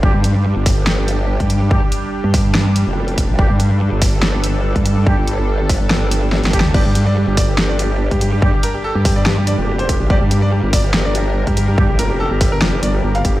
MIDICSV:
0, 0, Header, 1, 6, 480
1, 0, Start_track
1, 0, Key_signature, -2, "minor"
1, 0, Tempo, 419580
1, 34, Time_signature, 4, 2, 24, 8
1, 15330, End_track
2, 0, Start_track
2, 0, Title_t, "Analog synth pad"
2, 0, Program_c, 0, 89
2, 0, Note_on_c, 0, 55, 74
2, 0, Note_on_c, 0, 62, 70
2, 34, Note_on_c, 0, 67, 87
2, 3861, Note_off_c, 0, 67, 0
2, 3874, Note_on_c, 0, 69, 82
2, 7701, Note_off_c, 0, 69, 0
2, 7713, Note_on_c, 0, 67, 87
2, 11541, Note_off_c, 0, 67, 0
2, 11554, Note_on_c, 0, 70, 88
2, 15330, Note_off_c, 0, 55, 0
2, 15330, Note_off_c, 0, 62, 0
2, 15330, Note_off_c, 0, 70, 0
2, 15330, End_track
3, 0, Start_track
3, 0, Title_t, "Grand piano"
3, 0, Program_c, 1, 0
3, 7713, Note_on_c, 1, 74, 100
3, 7796, Note_off_c, 1, 74, 0
3, 7841, Note_on_c, 1, 67, 63
3, 7914, Note_off_c, 1, 67, 0
3, 7954, Note_on_c, 1, 67, 64
3, 8036, Note_off_c, 1, 67, 0
3, 8081, Note_on_c, 1, 74, 100
3, 8154, Note_off_c, 1, 74, 0
3, 8193, Note_on_c, 1, 67, 65
3, 8276, Note_off_c, 1, 67, 0
3, 8321, Note_on_c, 1, 67, 66
3, 8395, Note_off_c, 1, 67, 0
3, 8433, Note_on_c, 1, 74, 99
3, 8516, Note_off_c, 1, 74, 0
3, 8560, Note_on_c, 1, 67, 67
3, 8634, Note_off_c, 1, 67, 0
3, 8673, Note_on_c, 1, 67, 66
3, 8756, Note_off_c, 1, 67, 0
3, 8801, Note_on_c, 1, 74, 98
3, 8874, Note_off_c, 1, 74, 0
3, 8914, Note_on_c, 1, 67, 61
3, 8997, Note_off_c, 1, 67, 0
3, 9041, Note_on_c, 1, 67, 63
3, 9115, Note_off_c, 1, 67, 0
3, 9282, Note_on_c, 1, 67, 65
3, 9355, Note_off_c, 1, 67, 0
3, 9395, Note_on_c, 1, 67, 61
3, 9477, Note_off_c, 1, 67, 0
3, 9521, Note_on_c, 1, 67, 67
3, 9595, Note_off_c, 1, 67, 0
3, 9762, Note_on_c, 1, 67, 64
3, 9835, Note_off_c, 1, 67, 0
3, 9875, Note_on_c, 1, 70, 86
3, 9957, Note_off_c, 1, 70, 0
3, 10002, Note_on_c, 1, 67, 69
3, 10075, Note_off_c, 1, 67, 0
3, 10115, Note_on_c, 1, 69, 99
3, 10197, Note_off_c, 1, 69, 0
3, 10241, Note_on_c, 1, 67, 70
3, 10315, Note_off_c, 1, 67, 0
3, 10355, Note_on_c, 1, 67, 67
3, 10437, Note_off_c, 1, 67, 0
3, 10481, Note_on_c, 1, 74, 93
3, 10554, Note_off_c, 1, 74, 0
3, 10595, Note_on_c, 1, 67, 68
3, 10677, Note_off_c, 1, 67, 0
3, 10722, Note_on_c, 1, 67, 68
3, 10795, Note_off_c, 1, 67, 0
3, 10835, Note_on_c, 1, 74, 96
3, 10917, Note_off_c, 1, 74, 0
3, 10963, Note_on_c, 1, 67, 63
3, 11035, Note_off_c, 1, 67, 0
3, 11075, Note_on_c, 1, 67, 66
3, 11157, Note_off_c, 1, 67, 0
3, 11202, Note_on_c, 1, 72, 93
3, 11275, Note_off_c, 1, 72, 0
3, 11315, Note_on_c, 1, 67, 64
3, 11397, Note_off_c, 1, 67, 0
3, 11441, Note_on_c, 1, 67, 66
3, 11515, Note_off_c, 1, 67, 0
3, 11555, Note_on_c, 1, 74, 99
3, 11637, Note_off_c, 1, 74, 0
3, 11682, Note_on_c, 1, 67, 64
3, 11755, Note_off_c, 1, 67, 0
3, 11795, Note_on_c, 1, 67, 63
3, 11877, Note_off_c, 1, 67, 0
3, 11921, Note_on_c, 1, 74, 97
3, 11995, Note_off_c, 1, 74, 0
3, 12033, Note_on_c, 1, 67, 70
3, 12116, Note_off_c, 1, 67, 0
3, 12162, Note_on_c, 1, 67, 69
3, 12235, Note_off_c, 1, 67, 0
3, 12275, Note_on_c, 1, 74, 98
3, 12357, Note_off_c, 1, 74, 0
3, 12401, Note_on_c, 1, 67, 66
3, 12475, Note_off_c, 1, 67, 0
3, 12514, Note_on_c, 1, 67, 68
3, 12597, Note_off_c, 1, 67, 0
3, 12642, Note_on_c, 1, 74, 102
3, 12715, Note_off_c, 1, 74, 0
3, 12755, Note_on_c, 1, 67, 61
3, 12837, Note_off_c, 1, 67, 0
3, 12882, Note_on_c, 1, 67, 64
3, 12955, Note_off_c, 1, 67, 0
3, 13121, Note_on_c, 1, 67, 62
3, 13195, Note_off_c, 1, 67, 0
3, 13236, Note_on_c, 1, 67, 66
3, 13317, Note_off_c, 1, 67, 0
3, 13362, Note_on_c, 1, 67, 69
3, 13435, Note_off_c, 1, 67, 0
3, 13602, Note_on_c, 1, 67, 66
3, 13675, Note_off_c, 1, 67, 0
3, 13715, Note_on_c, 1, 70, 87
3, 13797, Note_off_c, 1, 70, 0
3, 13842, Note_on_c, 1, 67, 67
3, 13915, Note_off_c, 1, 67, 0
3, 13954, Note_on_c, 1, 69, 100
3, 14037, Note_off_c, 1, 69, 0
3, 14082, Note_on_c, 1, 67, 70
3, 14155, Note_off_c, 1, 67, 0
3, 14196, Note_on_c, 1, 67, 67
3, 14277, Note_off_c, 1, 67, 0
3, 14323, Note_on_c, 1, 70, 93
3, 14395, Note_off_c, 1, 70, 0
3, 14435, Note_on_c, 1, 67, 66
3, 14517, Note_off_c, 1, 67, 0
3, 14561, Note_on_c, 1, 67, 66
3, 14635, Note_off_c, 1, 67, 0
3, 14675, Note_on_c, 1, 74, 92
3, 14757, Note_off_c, 1, 74, 0
3, 14802, Note_on_c, 1, 67, 67
3, 14875, Note_off_c, 1, 67, 0
3, 14914, Note_on_c, 1, 67, 65
3, 14997, Note_off_c, 1, 67, 0
3, 15041, Note_on_c, 1, 77, 93
3, 15115, Note_off_c, 1, 77, 0
3, 15156, Note_on_c, 1, 67, 65
3, 15238, Note_off_c, 1, 67, 0
3, 15281, Note_on_c, 1, 67, 64
3, 15330, Note_off_c, 1, 67, 0
3, 15330, End_track
4, 0, Start_track
4, 0, Title_t, "Brass ensemble"
4, 0, Program_c, 2, 61
4, 34, Note_on_c, 2, 55, 78
4, 34, Note_on_c, 2, 62, 71
4, 34, Note_on_c, 2, 67, 88
4, 148, Note_off_c, 2, 55, 0
4, 148, Note_off_c, 2, 62, 0
4, 148, Note_off_c, 2, 67, 0
4, 1955, Note_on_c, 2, 55, 78
4, 1955, Note_on_c, 2, 62, 68
4, 1955, Note_on_c, 2, 67, 90
4, 2068, Note_off_c, 2, 55, 0
4, 2068, Note_off_c, 2, 62, 0
4, 2068, Note_off_c, 2, 67, 0
4, 3875, Note_on_c, 2, 55, 76
4, 3875, Note_on_c, 2, 62, 71
4, 3875, Note_on_c, 2, 67, 84
4, 3988, Note_off_c, 2, 55, 0
4, 3988, Note_off_c, 2, 62, 0
4, 3988, Note_off_c, 2, 67, 0
4, 5795, Note_on_c, 2, 55, 75
4, 5795, Note_on_c, 2, 62, 70
4, 5795, Note_on_c, 2, 67, 84
4, 5908, Note_off_c, 2, 55, 0
4, 5908, Note_off_c, 2, 62, 0
4, 5908, Note_off_c, 2, 67, 0
4, 7474, Note_on_c, 2, 55, 83
4, 7474, Note_on_c, 2, 62, 71
4, 7474, Note_on_c, 2, 67, 91
4, 7588, Note_off_c, 2, 55, 0
4, 7588, Note_off_c, 2, 62, 0
4, 7588, Note_off_c, 2, 67, 0
4, 7714, Note_on_c, 2, 55, 77
4, 7714, Note_on_c, 2, 62, 72
4, 7714, Note_on_c, 2, 67, 83
4, 7828, Note_off_c, 2, 55, 0
4, 7828, Note_off_c, 2, 62, 0
4, 7828, Note_off_c, 2, 67, 0
4, 9634, Note_on_c, 2, 62, 70
4, 9634, Note_on_c, 2, 67, 85
4, 9635, Note_on_c, 2, 55, 77
4, 9748, Note_off_c, 2, 55, 0
4, 9748, Note_off_c, 2, 62, 0
4, 9748, Note_off_c, 2, 67, 0
4, 11554, Note_on_c, 2, 55, 78
4, 11554, Note_on_c, 2, 62, 72
4, 11555, Note_on_c, 2, 67, 84
4, 11668, Note_off_c, 2, 55, 0
4, 11668, Note_off_c, 2, 62, 0
4, 11668, Note_off_c, 2, 67, 0
4, 13475, Note_on_c, 2, 55, 77
4, 13475, Note_on_c, 2, 62, 69
4, 13475, Note_on_c, 2, 67, 83
4, 13589, Note_off_c, 2, 55, 0
4, 13589, Note_off_c, 2, 62, 0
4, 13589, Note_off_c, 2, 67, 0
4, 15330, End_track
5, 0, Start_track
5, 0, Title_t, "Wobble bass"
5, 0, Program_c, 3, 39
5, 35, Note_on_c, 3, 31, 101
5, 141, Note_off_c, 3, 31, 0
5, 162, Note_on_c, 3, 43, 98
5, 622, Note_off_c, 3, 43, 0
5, 642, Note_on_c, 3, 31, 97
5, 1582, Note_off_c, 3, 31, 0
5, 1602, Note_on_c, 3, 43, 99
5, 2061, Note_off_c, 3, 43, 0
5, 2562, Note_on_c, 3, 43, 101
5, 3261, Note_off_c, 3, 43, 0
5, 3281, Note_on_c, 3, 29, 101
5, 3741, Note_off_c, 3, 29, 0
5, 3762, Note_on_c, 3, 34, 96
5, 3857, Note_off_c, 3, 34, 0
5, 3875, Note_on_c, 3, 31, 98
5, 3981, Note_off_c, 3, 31, 0
5, 4002, Note_on_c, 3, 43, 100
5, 4461, Note_off_c, 3, 43, 0
5, 4482, Note_on_c, 3, 31, 98
5, 5421, Note_off_c, 3, 31, 0
5, 5442, Note_on_c, 3, 43, 96
5, 5901, Note_off_c, 3, 43, 0
5, 5921, Note_on_c, 3, 31, 98
5, 6621, Note_off_c, 3, 31, 0
5, 6641, Note_on_c, 3, 31, 96
5, 7341, Note_off_c, 3, 31, 0
5, 7361, Note_on_c, 3, 31, 98
5, 7581, Note_off_c, 3, 31, 0
5, 7601, Note_on_c, 3, 38, 99
5, 7696, Note_off_c, 3, 38, 0
5, 7715, Note_on_c, 3, 31, 96
5, 7821, Note_off_c, 3, 31, 0
5, 7842, Note_on_c, 3, 43, 98
5, 8302, Note_off_c, 3, 43, 0
5, 8321, Note_on_c, 3, 31, 96
5, 9261, Note_off_c, 3, 31, 0
5, 9282, Note_on_c, 3, 43, 100
5, 9741, Note_off_c, 3, 43, 0
5, 10241, Note_on_c, 3, 43, 96
5, 10941, Note_off_c, 3, 43, 0
5, 10961, Note_on_c, 3, 29, 102
5, 11421, Note_off_c, 3, 29, 0
5, 11441, Note_on_c, 3, 34, 104
5, 11536, Note_off_c, 3, 34, 0
5, 11555, Note_on_c, 3, 31, 102
5, 11661, Note_off_c, 3, 31, 0
5, 11682, Note_on_c, 3, 43, 103
5, 12141, Note_off_c, 3, 43, 0
5, 12162, Note_on_c, 3, 31, 93
5, 13102, Note_off_c, 3, 31, 0
5, 13122, Note_on_c, 3, 43, 99
5, 13581, Note_off_c, 3, 43, 0
5, 13601, Note_on_c, 3, 33, 99
5, 13697, Note_off_c, 3, 33, 0
5, 13715, Note_on_c, 3, 29, 94
5, 14062, Note_off_c, 3, 29, 0
5, 14081, Note_on_c, 3, 31, 95
5, 14416, Note_off_c, 3, 31, 0
5, 14435, Note_on_c, 3, 29, 92
5, 14657, Note_off_c, 3, 29, 0
5, 14675, Note_on_c, 3, 31, 97
5, 14897, Note_off_c, 3, 31, 0
5, 14914, Note_on_c, 3, 31, 98
5, 15137, Note_off_c, 3, 31, 0
5, 15155, Note_on_c, 3, 31, 98
5, 15330, Note_off_c, 3, 31, 0
5, 15330, End_track
6, 0, Start_track
6, 0, Title_t, "Drums"
6, 35, Note_on_c, 9, 36, 127
6, 149, Note_off_c, 9, 36, 0
6, 275, Note_on_c, 9, 42, 73
6, 389, Note_off_c, 9, 42, 0
6, 755, Note_on_c, 9, 36, 105
6, 755, Note_on_c, 9, 46, 89
6, 869, Note_off_c, 9, 36, 0
6, 869, Note_off_c, 9, 46, 0
6, 995, Note_on_c, 9, 38, 121
6, 1109, Note_off_c, 9, 38, 0
6, 1235, Note_on_c, 9, 42, 76
6, 1350, Note_off_c, 9, 42, 0
6, 1602, Note_on_c, 9, 36, 64
6, 1602, Note_on_c, 9, 42, 37
6, 1715, Note_off_c, 9, 42, 0
6, 1715, Note_on_c, 9, 42, 84
6, 1716, Note_off_c, 9, 36, 0
6, 1829, Note_off_c, 9, 42, 0
6, 1955, Note_on_c, 9, 36, 116
6, 2069, Note_off_c, 9, 36, 0
6, 2195, Note_on_c, 9, 42, 73
6, 2309, Note_off_c, 9, 42, 0
6, 2675, Note_on_c, 9, 36, 105
6, 2675, Note_on_c, 9, 46, 92
6, 2789, Note_off_c, 9, 36, 0
6, 2789, Note_off_c, 9, 46, 0
6, 2915, Note_on_c, 9, 38, 118
6, 3029, Note_off_c, 9, 38, 0
6, 3155, Note_on_c, 9, 42, 79
6, 3269, Note_off_c, 9, 42, 0
6, 3522, Note_on_c, 9, 42, 35
6, 3635, Note_off_c, 9, 42, 0
6, 3635, Note_on_c, 9, 36, 58
6, 3635, Note_on_c, 9, 42, 81
6, 3749, Note_off_c, 9, 36, 0
6, 3749, Note_off_c, 9, 42, 0
6, 3875, Note_on_c, 9, 36, 119
6, 3989, Note_off_c, 9, 36, 0
6, 4115, Note_on_c, 9, 42, 75
6, 4230, Note_off_c, 9, 42, 0
6, 4595, Note_on_c, 9, 36, 102
6, 4595, Note_on_c, 9, 46, 93
6, 4709, Note_off_c, 9, 36, 0
6, 4709, Note_off_c, 9, 46, 0
6, 4835, Note_on_c, 9, 38, 113
6, 4949, Note_off_c, 9, 38, 0
6, 5075, Note_on_c, 9, 42, 82
6, 5189, Note_off_c, 9, 42, 0
6, 5442, Note_on_c, 9, 36, 60
6, 5442, Note_on_c, 9, 42, 38
6, 5554, Note_off_c, 9, 42, 0
6, 5554, Note_on_c, 9, 42, 85
6, 5556, Note_off_c, 9, 36, 0
6, 5669, Note_off_c, 9, 42, 0
6, 5795, Note_on_c, 9, 36, 121
6, 5909, Note_off_c, 9, 36, 0
6, 6035, Note_on_c, 9, 42, 81
6, 6149, Note_off_c, 9, 42, 0
6, 6515, Note_on_c, 9, 36, 98
6, 6515, Note_on_c, 9, 46, 96
6, 6629, Note_off_c, 9, 36, 0
6, 6629, Note_off_c, 9, 46, 0
6, 6755, Note_on_c, 9, 38, 116
6, 6869, Note_off_c, 9, 38, 0
6, 6995, Note_on_c, 9, 42, 84
6, 7109, Note_off_c, 9, 42, 0
6, 7235, Note_on_c, 9, 38, 67
6, 7349, Note_off_c, 9, 38, 0
6, 7362, Note_on_c, 9, 42, 39
6, 7395, Note_on_c, 9, 38, 85
6, 7474, Note_off_c, 9, 42, 0
6, 7474, Note_on_c, 9, 42, 85
6, 7475, Note_on_c, 9, 36, 61
6, 7509, Note_off_c, 9, 38, 0
6, 7554, Note_on_c, 9, 38, 101
6, 7589, Note_off_c, 9, 36, 0
6, 7589, Note_off_c, 9, 42, 0
6, 7668, Note_off_c, 9, 38, 0
6, 7714, Note_on_c, 9, 49, 78
6, 7715, Note_on_c, 9, 36, 125
6, 7829, Note_off_c, 9, 36, 0
6, 7829, Note_off_c, 9, 49, 0
6, 7954, Note_on_c, 9, 42, 83
6, 8068, Note_off_c, 9, 42, 0
6, 8434, Note_on_c, 9, 36, 105
6, 8434, Note_on_c, 9, 46, 97
6, 8549, Note_off_c, 9, 36, 0
6, 8549, Note_off_c, 9, 46, 0
6, 8675, Note_on_c, 9, 38, 123
6, 8789, Note_off_c, 9, 38, 0
6, 8914, Note_on_c, 9, 42, 85
6, 9029, Note_off_c, 9, 42, 0
6, 9282, Note_on_c, 9, 36, 66
6, 9282, Note_on_c, 9, 42, 41
6, 9395, Note_off_c, 9, 42, 0
6, 9395, Note_on_c, 9, 42, 85
6, 9396, Note_off_c, 9, 36, 0
6, 9509, Note_off_c, 9, 42, 0
6, 9635, Note_on_c, 9, 36, 127
6, 9749, Note_off_c, 9, 36, 0
6, 9875, Note_on_c, 9, 42, 88
6, 9989, Note_off_c, 9, 42, 0
6, 10354, Note_on_c, 9, 46, 91
6, 10355, Note_on_c, 9, 36, 107
6, 10469, Note_off_c, 9, 36, 0
6, 10469, Note_off_c, 9, 46, 0
6, 10594, Note_on_c, 9, 38, 126
6, 10709, Note_off_c, 9, 38, 0
6, 10835, Note_on_c, 9, 42, 85
6, 10949, Note_off_c, 9, 42, 0
6, 11202, Note_on_c, 9, 42, 42
6, 11314, Note_off_c, 9, 42, 0
6, 11314, Note_on_c, 9, 42, 92
6, 11315, Note_on_c, 9, 36, 64
6, 11429, Note_off_c, 9, 36, 0
6, 11429, Note_off_c, 9, 42, 0
6, 11555, Note_on_c, 9, 36, 127
6, 11669, Note_off_c, 9, 36, 0
6, 11795, Note_on_c, 9, 42, 79
6, 11909, Note_off_c, 9, 42, 0
6, 12275, Note_on_c, 9, 36, 106
6, 12275, Note_on_c, 9, 46, 89
6, 12389, Note_off_c, 9, 36, 0
6, 12389, Note_off_c, 9, 46, 0
6, 12515, Note_on_c, 9, 38, 127
6, 12629, Note_off_c, 9, 38, 0
6, 12754, Note_on_c, 9, 42, 85
6, 12869, Note_off_c, 9, 42, 0
6, 13122, Note_on_c, 9, 36, 67
6, 13122, Note_on_c, 9, 42, 38
6, 13235, Note_off_c, 9, 42, 0
6, 13235, Note_on_c, 9, 42, 83
6, 13236, Note_off_c, 9, 36, 0
6, 13349, Note_off_c, 9, 42, 0
6, 13475, Note_on_c, 9, 36, 127
6, 13589, Note_off_c, 9, 36, 0
6, 13715, Note_on_c, 9, 42, 80
6, 13829, Note_off_c, 9, 42, 0
6, 14195, Note_on_c, 9, 36, 109
6, 14195, Note_on_c, 9, 46, 91
6, 14309, Note_off_c, 9, 46, 0
6, 14310, Note_off_c, 9, 36, 0
6, 14435, Note_on_c, 9, 38, 127
6, 14549, Note_off_c, 9, 38, 0
6, 14675, Note_on_c, 9, 42, 78
6, 14789, Note_off_c, 9, 42, 0
6, 15042, Note_on_c, 9, 42, 36
6, 15155, Note_off_c, 9, 42, 0
6, 15155, Note_on_c, 9, 36, 64
6, 15155, Note_on_c, 9, 42, 81
6, 15269, Note_off_c, 9, 36, 0
6, 15269, Note_off_c, 9, 42, 0
6, 15330, End_track
0, 0, End_of_file